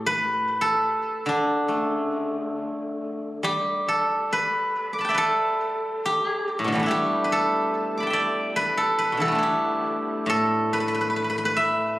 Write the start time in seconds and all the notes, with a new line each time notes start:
Already playing: A2 G4
0.06 B4
0.61 A4
1.26 D3 D4
1.68 A3
3.43 G3 G4
3.88 A4
4.33 B4
4.93 D6
4.99 A5 B5
5.05 G5
5.09 D5 E5
5.14 A4 B4
6.06 G4
6.59 A2
6.64 B2 D3
6.72 E3 G3 A3
6.79 B3 D4
6.86 G3 E4
6.91 G4
7.24 B4
7.32 A4
7.97 B5 D6
8.03 A5
8.07 E5 G5
8.13 D5
8.56 B4
8.77 A4
8.99 B4
9.12 B2
9.17 D3 E3
9.21 G3 A4
9.28 A3 B3
9.35 D4 E4
9.43 G4
10.26 A2 A4
10.73 B4
10.80 B4
10.88 B4
10.95 B4
11.01 B4
11.10 B4
11.16 B4
11.24 B4
11.30 B4
11.38 B4
11.45 B4
11.57 E5